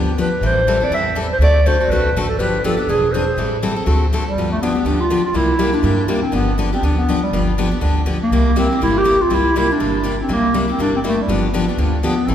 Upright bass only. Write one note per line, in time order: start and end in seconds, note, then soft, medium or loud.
0.00 0.31 D2 medium
0.41 0.80 A1 medium
0.90 1.30 E2 medium
1.38 1.78 D2 medium
1.88 2.09 B1 medium
2.13 2.34 A1 medium
2.37 2.77 G1 medium
2.86 3.27 E1 medium
3.37 3.77 A1 medium
3.86 4.26 D2 medium
4.35 4.75 G1 medium
4.84 5.24 D2 medium
5.33 5.74 C2 medium
5.83 6.23 G2 medium
6.33 6.73 G1 medium
6.82 7.22 D2 medium
7.31 7.71 G1 medium
7.81 8.21 D2 medium
8.31 8.71 C2 medium
8.81 9.21 G1 medium
9.31 9.71 C2 medium
9.80 10.20 G1 medium
10.29 10.69 C2 medium
10.79 11.19 G1 medium
11.28 11.68 G1 medium
11.77 12.18 D2 medium
12.28 12.35 A1 medium